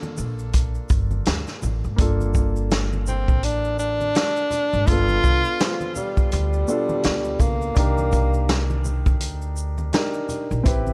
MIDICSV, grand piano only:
0, 0, Header, 1, 2, 480
1, 0, Start_track
1, 0, Key_signature, -2, "minor"
1, 0, Tempo, 722892
1, 1318, Time_signature, 4, 2, 24, 8
1, 7258, End_track
2, 0, Start_track
2, 0, Title_t, "Grand piano"
2, 0, Program_c, 0, 0
2, 0, Note_on_c, 0, 58, 63
2, 0, Note_on_c, 0, 62, 65
2, 0, Note_on_c, 0, 65, 62
2, 0, Note_on_c, 0, 69, 79
2, 1283, Note_off_c, 0, 58, 0
2, 1288, Note_off_c, 0, 62, 0
2, 1294, Note_off_c, 0, 65, 0
2, 1303, Note_on_c, 0, 58, 65
2, 1314, Note_on_c, 0, 62, 60
2, 1320, Note_off_c, 0, 69, 0
2, 1323, Note_on_c, 0, 65, 64
2, 1333, Note_on_c, 0, 69, 72
2, 3204, Note_off_c, 0, 58, 0
2, 3210, Note_off_c, 0, 62, 0
2, 3214, Note_off_c, 0, 65, 0
2, 3219, Note_off_c, 0, 69, 0
2, 3223, Note_on_c, 0, 58, 48
2, 3234, Note_on_c, 0, 62, 52
2, 3243, Note_on_c, 0, 65, 55
2, 3253, Note_on_c, 0, 69, 66
2, 3265, Note_on_c, 0, 59, 62
2, 3281, Note_off_c, 0, 58, 0
2, 4412, Note_off_c, 0, 62, 0
2, 4417, Note_off_c, 0, 65, 0
2, 4422, Note_off_c, 0, 69, 0
2, 4428, Note_off_c, 0, 59, 0
2, 4433, Note_on_c, 0, 47, 59
2, 4439, Note_on_c, 0, 62, 60
2, 4445, Note_on_c, 0, 65, 51
2, 4447, Note_on_c, 0, 69, 64
2, 5134, Note_off_c, 0, 62, 0
2, 5144, Note_on_c, 0, 62, 75
2, 5154, Note_on_c, 0, 63, 65
2, 5156, Note_off_c, 0, 47, 0
2, 5162, Note_off_c, 0, 65, 0
2, 5163, Note_off_c, 0, 69, 0
2, 5164, Note_on_c, 0, 67, 69
2, 5176, Note_on_c, 0, 70, 78
2, 6564, Note_off_c, 0, 62, 0
2, 6569, Note_off_c, 0, 63, 0
2, 6575, Note_off_c, 0, 67, 0
2, 6581, Note_off_c, 0, 70, 0
2, 6592, Note_on_c, 0, 62, 59
2, 6597, Note_on_c, 0, 63, 56
2, 6601, Note_on_c, 0, 67, 51
2, 6608, Note_on_c, 0, 70, 64
2, 7061, Note_on_c, 0, 60, 72
2, 7069, Note_on_c, 0, 64, 69
2, 7071, Note_off_c, 0, 67, 0
2, 7075, Note_off_c, 0, 62, 0
2, 7078, Note_off_c, 0, 63, 0
2, 7081, Note_on_c, 0, 67, 72
2, 7083, Note_off_c, 0, 70, 0
2, 7090, Note_on_c, 0, 71, 81
2, 7258, Note_off_c, 0, 60, 0
2, 7258, Note_off_c, 0, 64, 0
2, 7258, Note_off_c, 0, 67, 0
2, 7258, Note_off_c, 0, 71, 0
2, 7258, End_track
0, 0, End_of_file